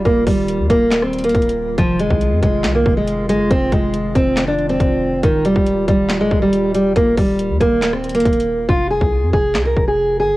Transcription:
Already playing: D#3 G3 F4
0.05 D#1 A#3, kick, closed hi-hat
0.27 D#1 G3, kick, open hi-hat
0.48 closed hi-hat
0.59 D#2
0.70 D#1 A#3, kick, closed hi-hat
0.92 snare, clap, closed hi-hat
1.02 C4, cross-stick
1.13 closed hi-hat
1.19 closed hi-hat
1.24 A#3, closed hi-hat
1.29 closed hi-hat
1.35 D#1, kick, closed hi-hat
1.42 closed hi-hat
1.49 closed hi-hat
1.78 F1 F3 G#3 F4, kick, closed hi-hat
1.99 G#3, closed hi-hat
2.10 C2, kick
2.21 closed hi-hat
2.32 F2
2.43 F1 G#3, kick, closed hi-hat
2.64 C2, snare, clap, closed hi-hat
2.75 A#3
2.86 F1, kick
2.97 G#3
3.08 closed hi-hat
3.29 G1 G#3, closed hi-hat
3.40 F1
3.51 F1 C4, kick, closed hi-hat
3.72 F1 G#3, kick, closed hi-hat
3.94 closed hi-hat
4.15 F1 C4, kick, closed hi-hat
4.37 snare, clap, closed hi-hat
4.48 D4
4.59 closed hi-hat
4.69 C4, closed hi-hat
4.80 F1, kick, closed hi-hat
5.23 D#1 D#3 G3, kick, closed hi-hat
5.45 F1 G3, closed hi-hat
5.56 D#1, kick
5.66 closed hi-hat
5.88 D#1 G3, kick, closed hi-hat
6.10 snare, clap, closed hi-hat
6.21 G#3
6.31 D#1, kick
6.42 G3
6.53 closed hi-hat
6.75 G3, closed hi-hat
6.96 D#1 A#3, kick, closed hi-hat
7.17 D#1 G3, kick, open hi-hat
7.39 closed hi-hat
7.50 D#2
7.60 D#1 A#3, kick, closed hi-hat
7.82 snare, clap, closed hi-hat
7.93 C4, cross-stick
8.04 closed hi-hat
8.09 closed hi-hat
8.15 A#3, closed hi-hat
8.20 closed hi-hat
8.25 D#1, kick, closed hi-hat
8.33 closed hi-hat
8.40 closed hi-hat
8.69 F1 F4, kick
8.90 G#4
9.01 C2, kick
9.23 F2
9.33 F1 G#4, kick
9.55 C2, snare, clap
9.65 A#4
9.77 F1, kick
9.88 G#4
10.20 G1 G#4
10.31 F1

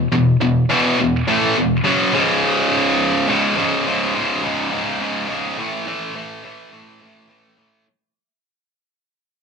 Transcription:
0.12 E2 B2
0.41 E2 B2
0.70 E2 B2 E3
1.00 E2 B2
1.28 A2 E3 A3
1.56 E2 B2
1.84 F#2 C#3 F#3
2.13 C#2 G#2 C#3
3.28 C#2 G#2 C#3
3.56 C#2 G#2 C#3
3.86 C#2 G#2 C#3
4.15 C#2 G#2 C#3
4.43 C#2 G#2 C#3
4.72 C#2 G#2 C#3
5.00 C#2 G#2 C#3
5.29 C#2 G#2 C#3
5.58 A2 E3 A3
5.86 A2 E3 A3
6.15 A2 E3 A3
6.43 A2 E3 A3
6.71 A2 E3 A3
7.01 A2 E3 A3
7.29 A2 E3 A3
7.58 A2 E3 A3

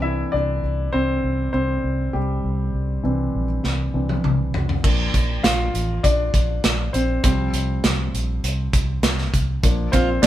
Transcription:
Already playing: C2 E3 C4 D4
0.02 E4 E5
0.32 C2 D4 D5
0.64 C2
0.93 C2 C4 C5
1.24 C2
1.53 C2 C4 C5
1.84 C2
2.13 C2 G3 G4
2.44 C2
2.74 C2
3.03 C2 E3 C4 D4
3.34 A#1
3.64 C2, snare
3.94 C2 E3 C4 D4
4.09 high tom
4.24 C2, mid tom
4.54 C2, floor tom
4.69 floor tom
4.83 A#1 F3 A#3 D4, kick, crash
5.14 A#1, kick, closed hi-hat
5.43 A#1 F4 F5, snare, closed hi-hat
5.74 A1, closed hi-hat
6.03 A#1 D4 D5, kick, closed hi-hat
6.34 A#1, kick, closed hi-hat
6.64 A#1, snare, closed hi-hat
6.93 A#1 C4 C5, closed hi-hat
7.24 C2 F3 G3 C4 C5, kick, closed hi-hat
7.54 C2, closed hi-hat
7.84 C2, snare, closed hi-hat
8.14 A#1, closed hi-hat
8.44 C2, closed hi-hat
8.73 C2, kick, closed hi-hat
9.03 C2, snare, closed hi-hat
9.18 snare
9.33 C2, kick, closed hi-hat
9.63 A#1 F3 A#3 D4, kick, closed hi-hat
9.92 A#1 C4 F4 C5, kick, closed hi-hat
10.22 A#1 D4 D5, snare, clap, closed hi-hat

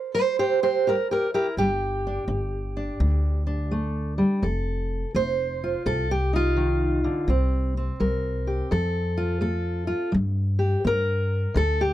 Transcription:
Already playing: G3 A#4 C5
0.15 G3 G4 C5
0.39 G4 C5
0.63 G4 C5
0.87 G3 G4 A#4
1.11 G4 A#4
1.34 E4 G4 A#4
1.57 G1 G3 G4
2.07 D4
2.28 G1 D4
2.77 D4
3.00 D2 D3
3.47 D4
3.71 A3
4.18 G3
4.43 F1 F3 A4
5.15 F1 A3 C5
5.64 F4
5.86 C2 C3 A4
6.11 G4
6.33 D#4 F4
6.57 D#3
7.04 D3
7.28 C2 C3 C4
7.77 C4
8.00 C2 G3 A#4
8.47 G4
8.71 F2 F3 A4
9.17 F4
9.41 A3 A4
9.87 F4
10.12 G2 G3
10.59 G4
10.84 G2 B3 A#4
11.54 D2 D3 A4
11.81 G4

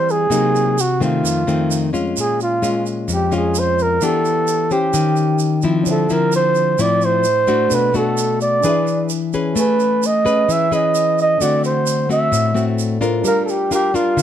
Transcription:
Already playing: E3 G3 C4 E4 C5
0.09 G#4, shaker
0.30 C3 F#3 A#3 D#4, shaker
0.56 shaker
0.78 F#4, shaker
1.00 D#3 A3 C4 F4, shaker
1.23 F2, shaker
1.47 D#3 A3 C4, shaker
1.71 shaker
1.93 G#3 C#4 F4, shaker
2.17 A#2 G#4, shaker
2.40 F4, shaker
2.62 G#3 C#4 F4, shaker
2.86 shaker
3.08 F2, shaker
3.13 G4
3.31 G#3 C#4 F4, shaker
3.37 G#4
3.55 shaker
3.59 C5
3.79 A#4, shaker
4.01 E3 B3 D4 G4 A4, shaker
4.25 shaker
4.48 shaker
4.71 C#4 G4 C5, shaker
4.94 D#3, shaker
5.16 shaker
5.39 shaker
5.62 F3 C4 E4, shaker
5.83 D3 D4, shaker
5.87 A4 C5 E5
6.10 F3 C4 E4 A#4, shaker
6.32 C5, shaker
6.55 shaker
6.79 A2 F3 C4 E4 D5, shaker
7.01 C5, shaker
7.24 shaker
7.48 A3 D4 F#4, shaker
7.69 B2 D4 A4 B4, shaker
7.74 B4 F#5
7.94 A3 D4 F#4 A4, shaker
8.18 shaker
8.41 D5, shaker
8.60 E3 D4 G#4, shaker
8.64 G#4 B4 E5
8.87 shaker
9.09 shaker
9.33 C#4 G#4 B4, shaker
9.53 A3 C#4, shaker
9.58 B4 G#5
9.80 shaker
10.03 D#5, shaker
10.25 C#4 G#4 B4, shaker
10.48 E3 E5, shaker
10.71 C#4 G#4 B4 D#5, shaker
10.95 shaker
11.18 D#5, shaker
11.38 D3 A3 C4 D4 A4 C5, shaker
11.42 F#4 D5 F#5
11.64 C5, shaker
11.87 shaker
12.09 A3 C4 F#4 E5, shaker
12.32 A2, shaker
12.54 A3 C4 F#4, shaker
12.79 shaker
13.01 D4 F4 A4 A#4 C5 D5, shaker
13.22 G3 D4 G4, shaker
13.26 A#4 F5
13.45 A4, shaker
13.50 G4
13.71 D4 F4 G4 A#4, shaker
13.94 D4 F4 A#4, shaker
14.17 D3, shaker

